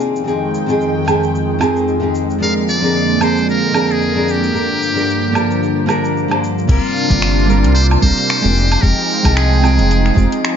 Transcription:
Already playing: nylon-string guitar C4 D#4 G4 G#4
0.00 analog synth pad F2 D#3 G#3 G5, shaker
0.16 shaker
0.24 nylon-string guitar C4 D#4 G4 G#4, shaker
0.55 shaker
0.66 nylon-string guitar C4 D#4 F4 G4 G#4, shaker
0.81 shaker
1.05 nylon-string guitar C4 D#4 G4, low woodblock, shaker
1.09 nylon-string guitar G#4
1.23 shaker
1.35 shaker
1.59 nylon-string guitar C4 D#4 F4 G4 G#4, low woodblock, shaker
1.76 shaker
1.88 shaker
2.00 nylon-string guitar C4 D#4 F4 G4 G#4
2.15 shaker
2.30 shaker
2.38 analog synth pad D3 A#3, nylon-string guitar F3 C4 D4 G#4 A#4, muted trumpet F5, shaker
2.69 muted trumpet D5, shaker
2.80 nylon-string guitar F3 C4 D4 G#4 A#4, shaker
2.96 shaker
3.18 nylon-string guitar F3 C4 D4 G#4 A#4, low woodblock, shaker
3.23 muted trumpet C5
3.37 shaker
3.49 muted trumpet A#4, shaker
3.71 nylon-string guitar F3 C4 D4 G#4, low woodblock, shaker
3.75 nylon-string guitar A#4
3.90 muted trumpet G#4, shaker
4.02 shaker
4.13 nylon-string guitar F3 C4 D4 F4 G#4 A#4
4.28 muted trumpet G4, shaker
4.44 shaker
4.51 nylon-string guitar A#3 D4 G4
4.55 analog synth pad G2 F3, nylon-string guitar A#4, shaker
4.82 shaker
4.93 nylon-string guitar A#3 D4 G4 A#4
4.98 shaker
5.10 shaker
5.32 nylon-string guitar A#3 D4 F4 G4 A#4, low woodblock, shaker
5.51 shaker
5.63 shaker
5.86 nylon-string guitar A#3 D4 F4 G4 A#4, low woodblock, shaker
6.05 shaker
6.17 shaker
6.28 nylon-string guitar A#3 D4 G4, low woodblock
6.32 nylon-string guitar C5
6.44 shaker
6.58 shaker
6.67 analog synth bass C2, analog synth pad C3 A#3 D4 F4, nylon-string guitar G3 C4 D4 F4 A#4, muted trumpet F4, kick, closed hi-hat, crash, shaker
6.85 shaker
6.96 shaker
7.08 analog synth bass G1, nylon-string guitar G3 C4 D4 F4 A#4, kick, closed hi-hat, shaker
7.22 finger snap, closed hi-hat, shaker
7.39 shaker
7.46 nylon-string guitar G3 C4 D4 F4 A#4
7.50 shaker
7.64 analog synth bass C2, closed hi-hat, shaker
7.75 muted trumpet C5, closed hi-hat, shaker
7.91 low woodblock, shaker
8.01 analog synth bass C2, nylon-string guitar G3 C4 D4 F4, muted trumpet C5, kick, shaker
8.05 nylon-string guitar A#4
8.18 closed hi-hat, shaker
8.30 finger snap, closed hi-hat, shaker
8.41 analog synth bass F1, nylon-string guitar G#3 C4 D#4 F4 G4
8.56 analog synth pad F3 G#3 D#4 G5, shaker
8.72 closed hi-hat, low woodblock, shaker
8.80 analog synth bass F1, nylon-string guitar G#3 C4 D#4 F4 G4, muted trumpet A#4, kick, closed hi-hat, shaker
8.99 shaker
9.11 shaker
9.23 analog synth bass C2, nylon-string guitar G#3 C4 D#4 F4 G4, kick, closed hi-hat, low woodblock, shaker
9.36 muted trumpet G#4, finger snap, closed hi-hat, shaker
9.53 shaker
9.60 nylon-string guitar G#3 C4 D#4 F4, low woodblock
9.64 nylon-string guitar G5, shaker
9.79 analog synth bass F1, closed hi-hat, shaker
9.91 closed hi-hat, shaker
10.06 finger snap, shaker
10.14 analog synth bass F1, nylon-string guitar G#3 C4 D#4 F4 G4, kick, shaker
10.32 closed hi-hat, shaker
10.45 finger snap, closed hi-hat, shaker

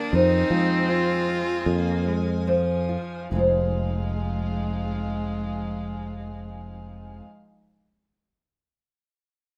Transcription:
Already playing: nylon-string guitar D#3 D#4, viola A#3, cello D4, string section F5 G5 D#6
0.11 fretless electric bass F2, nylon-string guitar F2 C5, viola C4, cello D#4, string section C5 G#5
0.50 fretless electric bass F3, nylon-string guitar G#3
0.88 nylon-string guitar D#4, cello F4
1.27 nylon-string guitar D#4
1.60 viola C4
1.66 fretless electric bass F2, viola A#3, nylon-string guitar D#4
2.07 viola G#3, nylon-string guitar D#4
2.47 viola F3, nylon-string guitar C5
2.89 nylon-string guitar F4
3.31 fretless electric bass F1, nylon-string guitar F2 G#3, string section F3 D#4 G#4 F5, viola G#3
3.35 nylon-string guitar D#4 F4 C5

